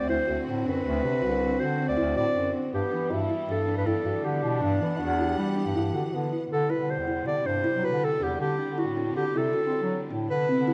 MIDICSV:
0, 0, Header, 1, 6, 480
1, 0, Start_track
1, 0, Tempo, 378072
1, 1075, Time_signature, 5, 2, 24, 8
1, 13632, End_track
2, 0, Start_track
2, 0, Title_t, "Clarinet"
2, 0, Program_c, 0, 71
2, 123, Note_on_c, 0, 72, 90
2, 566, Note_off_c, 0, 72, 0
2, 852, Note_on_c, 0, 71, 88
2, 2027, Note_on_c, 0, 72, 86
2, 2046, Note_off_c, 0, 71, 0
2, 2385, Note_off_c, 0, 72, 0
2, 2392, Note_on_c, 0, 74, 84
2, 2728, Note_off_c, 0, 74, 0
2, 2748, Note_on_c, 0, 74, 95
2, 3198, Note_off_c, 0, 74, 0
2, 3480, Note_on_c, 0, 67, 83
2, 4051, Note_off_c, 0, 67, 0
2, 4452, Note_on_c, 0, 69, 81
2, 4778, Note_off_c, 0, 69, 0
2, 4792, Note_on_c, 0, 71, 80
2, 4905, Note_on_c, 0, 69, 92
2, 4924, Note_off_c, 0, 71, 0
2, 5381, Note_on_c, 0, 67, 78
2, 5400, Note_off_c, 0, 69, 0
2, 5857, Note_on_c, 0, 62, 84
2, 5876, Note_off_c, 0, 67, 0
2, 7784, Note_off_c, 0, 62, 0
2, 8287, Note_on_c, 0, 69, 89
2, 8511, Note_on_c, 0, 71, 94
2, 8530, Note_off_c, 0, 69, 0
2, 8762, Note_on_c, 0, 72, 77
2, 8781, Note_off_c, 0, 71, 0
2, 9225, Note_off_c, 0, 72, 0
2, 9232, Note_on_c, 0, 74, 94
2, 9476, Note_on_c, 0, 72, 102
2, 9495, Note_off_c, 0, 74, 0
2, 9959, Note_on_c, 0, 71, 94
2, 9978, Note_off_c, 0, 72, 0
2, 10215, Note_on_c, 0, 69, 88
2, 10234, Note_off_c, 0, 71, 0
2, 10442, Note_on_c, 0, 67, 85
2, 10461, Note_off_c, 0, 69, 0
2, 10665, Note_off_c, 0, 67, 0
2, 10673, Note_on_c, 0, 67, 91
2, 11167, Note_on_c, 0, 66, 73
2, 11186, Note_off_c, 0, 67, 0
2, 11626, Note_off_c, 0, 66, 0
2, 11633, Note_on_c, 0, 67, 94
2, 11900, Note_on_c, 0, 69, 97
2, 11919, Note_off_c, 0, 67, 0
2, 12845, Note_off_c, 0, 69, 0
2, 13080, Note_on_c, 0, 71, 102
2, 13632, Note_off_c, 0, 71, 0
2, 13632, End_track
3, 0, Start_track
3, 0, Title_t, "Kalimba"
3, 0, Program_c, 1, 108
3, 114, Note_on_c, 1, 64, 76
3, 265, Note_off_c, 1, 64, 0
3, 350, Note_on_c, 1, 66, 63
3, 654, Note_off_c, 1, 66, 0
3, 837, Note_on_c, 1, 62, 59
3, 987, Note_off_c, 1, 62, 0
3, 1308, Note_on_c, 1, 62, 63
3, 1461, Note_off_c, 1, 62, 0
3, 1546, Note_on_c, 1, 66, 73
3, 1700, Note_off_c, 1, 66, 0
3, 1777, Note_on_c, 1, 62, 59
3, 1934, Note_off_c, 1, 62, 0
3, 2025, Note_on_c, 1, 66, 68
3, 2179, Note_off_c, 1, 66, 0
3, 2259, Note_on_c, 1, 62, 66
3, 2415, Note_off_c, 1, 62, 0
3, 2503, Note_on_c, 1, 64, 80
3, 2657, Note_off_c, 1, 64, 0
3, 2747, Note_on_c, 1, 66, 69
3, 3051, Note_off_c, 1, 66, 0
3, 3227, Note_on_c, 1, 62, 53
3, 3381, Note_off_c, 1, 62, 0
3, 3704, Note_on_c, 1, 62, 68
3, 3858, Note_off_c, 1, 62, 0
3, 3943, Note_on_c, 1, 66, 71
3, 4097, Note_off_c, 1, 66, 0
3, 4185, Note_on_c, 1, 64, 69
3, 4339, Note_off_c, 1, 64, 0
3, 4428, Note_on_c, 1, 67, 75
3, 4581, Note_off_c, 1, 67, 0
3, 4672, Note_on_c, 1, 62, 63
3, 4823, Note_off_c, 1, 62, 0
3, 4912, Note_on_c, 1, 64, 79
3, 5063, Note_off_c, 1, 64, 0
3, 5147, Note_on_c, 1, 66, 68
3, 5451, Note_off_c, 1, 66, 0
3, 5632, Note_on_c, 1, 64, 53
3, 5784, Note_off_c, 1, 64, 0
3, 6110, Note_on_c, 1, 62, 70
3, 6262, Note_off_c, 1, 62, 0
3, 6353, Note_on_c, 1, 66, 82
3, 6504, Note_off_c, 1, 66, 0
3, 6594, Note_on_c, 1, 64, 66
3, 6745, Note_off_c, 1, 64, 0
3, 6841, Note_on_c, 1, 67, 63
3, 6989, Note_off_c, 1, 67, 0
3, 7064, Note_on_c, 1, 62, 68
3, 7218, Note_off_c, 1, 62, 0
3, 7309, Note_on_c, 1, 64, 81
3, 7461, Note_off_c, 1, 64, 0
3, 7548, Note_on_c, 1, 66, 71
3, 7851, Note_off_c, 1, 66, 0
3, 8029, Note_on_c, 1, 64, 58
3, 8181, Note_off_c, 1, 64, 0
3, 8503, Note_on_c, 1, 64, 73
3, 8656, Note_off_c, 1, 64, 0
3, 8752, Note_on_c, 1, 67, 72
3, 8903, Note_off_c, 1, 67, 0
3, 8983, Note_on_c, 1, 64, 64
3, 9137, Note_off_c, 1, 64, 0
3, 9216, Note_on_c, 1, 67, 69
3, 9372, Note_off_c, 1, 67, 0
3, 9463, Note_on_c, 1, 62, 68
3, 9616, Note_off_c, 1, 62, 0
3, 9702, Note_on_c, 1, 64, 84
3, 9856, Note_off_c, 1, 64, 0
3, 9938, Note_on_c, 1, 66, 73
3, 10244, Note_off_c, 1, 66, 0
3, 10418, Note_on_c, 1, 62, 56
3, 10573, Note_off_c, 1, 62, 0
3, 10900, Note_on_c, 1, 62, 67
3, 11054, Note_off_c, 1, 62, 0
3, 11145, Note_on_c, 1, 64, 78
3, 11297, Note_off_c, 1, 64, 0
3, 11389, Note_on_c, 1, 62, 67
3, 11541, Note_off_c, 1, 62, 0
3, 11634, Note_on_c, 1, 66, 64
3, 11784, Note_off_c, 1, 66, 0
3, 11877, Note_on_c, 1, 64, 68
3, 12026, Note_off_c, 1, 64, 0
3, 12101, Note_on_c, 1, 66, 80
3, 12255, Note_off_c, 1, 66, 0
3, 12348, Note_on_c, 1, 67, 69
3, 12651, Note_off_c, 1, 67, 0
3, 12830, Note_on_c, 1, 62, 66
3, 12981, Note_off_c, 1, 62, 0
3, 13316, Note_on_c, 1, 60, 70
3, 13465, Note_off_c, 1, 60, 0
3, 13552, Note_on_c, 1, 64, 86
3, 13632, Note_off_c, 1, 64, 0
3, 13632, End_track
4, 0, Start_track
4, 0, Title_t, "French horn"
4, 0, Program_c, 2, 60
4, 0, Note_on_c, 2, 60, 75
4, 3460, Note_on_c, 2, 59, 94
4, 3479, Note_off_c, 2, 60, 0
4, 3954, Note_on_c, 2, 64, 100
4, 3973, Note_off_c, 2, 59, 0
4, 4570, Note_off_c, 2, 64, 0
4, 4910, Note_on_c, 2, 62, 96
4, 6337, Note_on_c, 2, 66, 97
4, 6356, Note_off_c, 2, 62, 0
4, 6552, Note_off_c, 2, 66, 0
4, 6560, Note_on_c, 2, 67, 100
4, 7795, Note_on_c, 2, 59, 80
4, 7814, Note_off_c, 2, 67, 0
4, 8273, Note_off_c, 2, 59, 0
4, 13632, End_track
5, 0, Start_track
5, 0, Title_t, "String section"
5, 0, Program_c, 3, 48
5, 0, Note_on_c, 3, 50, 66
5, 0, Note_on_c, 3, 60, 60
5, 0, Note_on_c, 3, 66, 69
5, 3427, Note_off_c, 3, 60, 0
5, 3427, Note_off_c, 3, 66, 0
5, 3428, Note_off_c, 3, 50, 0
5, 3468, Note_on_c, 3, 52, 65
5, 3476, Note_on_c, 3, 55, 73
5, 3478, Note_on_c, 3, 59, 59
5, 5850, Note_off_c, 3, 55, 0
5, 5854, Note_on_c, 3, 78, 68
5, 8220, Note_off_c, 3, 52, 0
5, 8226, Note_off_c, 3, 59, 0
5, 8238, Note_off_c, 3, 78, 0
5, 8274, Note_on_c, 3, 48, 65
5, 8276, Note_on_c, 3, 47, 55
5, 8276, Note_on_c, 3, 55, 66
5, 10647, Note_off_c, 3, 48, 0
5, 10649, Note_off_c, 3, 47, 0
5, 10681, Note_on_c, 3, 50, 59
5, 10687, Note_on_c, 3, 60, 57
5, 13024, Note_off_c, 3, 55, 0
5, 13045, Note_on_c, 3, 64, 78
5, 13051, Note_off_c, 3, 50, 0
5, 13051, Note_on_c, 3, 48, 70
5, 13054, Note_on_c, 3, 59, 59
5, 13055, Note_off_c, 3, 60, 0
5, 13632, Note_off_c, 3, 48, 0
5, 13632, Note_off_c, 3, 59, 0
5, 13632, Note_off_c, 3, 64, 0
5, 13632, End_track
6, 0, Start_track
6, 0, Title_t, "Bass clarinet"
6, 0, Program_c, 4, 71
6, 7, Note_on_c, 4, 38, 73
6, 105, Note_off_c, 4, 38, 0
6, 128, Note_on_c, 4, 38, 79
6, 226, Note_off_c, 4, 38, 0
6, 372, Note_on_c, 4, 38, 74
6, 468, Note_off_c, 4, 38, 0
6, 612, Note_on_c, 4, 45, 86
6, 812, Note_off_c, 4, 45, 0
6, 842, Note_on_c, 4, 42, 82
6, 1046, Note_off_c, 4, 42, 0
6, 1082, Note_on_c, 4, 38, 99
6, 1286, Note_off_c, 4, 38, 0
6, 1316, Note_on_c, 4, 48, 74
6, 1523, Note_off_c, 4, 48, 0
6, 1562, Note_on_c, 4, 36, 86
6, 1974, Note_off_c, 4, 36, 0
6, 2039, Note_on_c, 4, 50, 81
6, 2348, Note_off_c, 4, 50, 0
6, 2400, Note_on_c, 4, 38, 77
6, 2501, Note_off_c, 4, 38, 0
6, 2516, Note_on_c, 4, 38, 88
6, 2723, Note_off_c, 4, 38, 0
6, 2753, Note_on_c, 4, 45, 87
6, 2857, Note_off_c, 4, 45, 0
6, 2989, Note_on_c, 4, 42, 82
6, 3199, Note_off_c, 4, 42, 0
6, 3479, Note_on_c, 4, 43, 90
6, 3580, Note_off_c, 4, 43, 0
6, 3710, Note_on_c, 4, 52, 74
6, 3919, Note_off_c, 4, 52, 0
6, 3956, Note_on_c, 4, 43, 90
6, 4162, Note_off_c, 4, 43, 0
6, 4429, Note_on_c, 4, 43, 78
6, 4742, Note_off_c, 4, 43, 0
6, 4786, Note_on_c, 4, 43, 90
6, 4893, Note_off_c, 4, 43, 0
6, 4905, Note_on_c, 4, 43, 79
6, 5013, Note_off_c, 4, 43, 0
6, 5141, Note_on_c, 4, 43, 76
6, 5250, Note_off_c, 4, 43, 0
6, 5382, Note_on_c, 4, 50, 87
6, 5594, Note_off_c, 4, 50, 0
6, 5634, Note_on_c, 4, 47, 86
6, 5841, Note_off_c, 4, 47, 0
6, 5867, Note_on_c, 4, 43, 105
6, 6077, Note_off_c, 4, 43, 0
6, 6121, Note_on_c, 4, 52, 75
6, 6325, Note_off_c, 4, 52, 0
6, 6362, Note_on_c, 4, 40, 104
6, 6772, Note_off_c, 4, 40, 0
6, 6829, Note_on_c, 4, 55, 87
6, 7141, Note_off_c, 4, 55, 0
6, 7187, Note_on_c, 4, 43, 83
6, 7293, Note_off_c, 4, 43, 0
6, 7311, Note_on_c, 4, 43, 86
6, 7518, Note_off_c, 4, 43, 0
6, 7541, Note_on_c, 4, 50, 88
6, 7649, Note_off_c, 4, 50, 0
6, 7787, Note_on_c, 4, 50, 82
6, 7996, Note_off_c, 4, 50, 0
6, 8270, Note_on_c, 4, 50, 94
6, 8478, Note_off_c, 4, 50, 0
6, 8624, Note_on_c, 4, 50, 70
6, 8835, Note_off_c, 4, 50, 0
6, 8867, Note_on_c, 4, 40, 71
6, 9223, Note_on_c, 4, 50, 81
6, 9242, Note_off_c, 4, 40, 0
6, 9330, Note_off_c, 4, 50, 0
6, 9465, Note_on_c, 4, 43, 78
6, 9675, Note_off_c, 4, 43, 0
6, 9825, Note_on_c, 4, 54, 69
6, 10035, Note_off_c, 4, 54, 0
6, 10061, Note_on_c, 4, 50, 82
6, 10272, Note_off_c, 4, 50, 0
6, 10420, Note_on_c, 4, 40, 88
6, 10632, Note_off_c, 4, 40, 0
6, 10661, Note_on_c, 4, 50, 94
6, 10872, Note_off_c, 4, 50, 0
6, 11023, Note_on_c, 4, 50, 71
6, 11233, Note_off_c, 4, 50, 0
6, 11257, Note_on_c, 4, 45, 78
6, 11623, Note_on_c, 4, 50, 88
6, 11642, Note_off_c, 4, 45, 0
6, 11729, Note_off_c, 4, 50, 0
6, 11869, Note_on_c, 4, 48, 77
6, 12077, Note_off_c, 4, 48, 0
6, 12240, Note_on_c, 4, 60, 85
6, 12443, Note_off_c, 4, 60, 0
6, 12472, Note_on_c, 4, 54, 90
6, 12678, Note_off_c, 4, 54, 0
6, 12837, Note_on_c, 4, 45, 89
6, 13041, Note_off_c, 4, 45, 0
6, 13078, Note_on_c, 4, 50, 86
6, 13282, Note_off_c, 4, 50, 0
6, 13436, Note_on_c, 4, 50, 77
6, 13632, Note_off_c, 4, 50, 0
6, 13632, End_track
0, 0, End_of_file